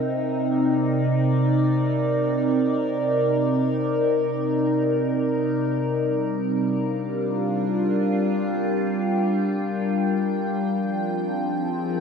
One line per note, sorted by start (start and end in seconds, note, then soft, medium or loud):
0.00 5.86 C3 medium
0.00 7.73 C4 medium
0.00 5.83 D#4 medium
0.00 12.00 A#4 medium
0.00 7.72 D5 medium
0.00 0.20 G5 medium
5.83 10.54 G3 medium
6.40 12.00 F4 medium
6.49 10.55 D4 medium
7.94 12.00 G5 medium
10.53 12.00 F3 medium
10.91 12.00 C4 medium
11.31 12.00 G#4 medium
11.36 12.00 D#4 medium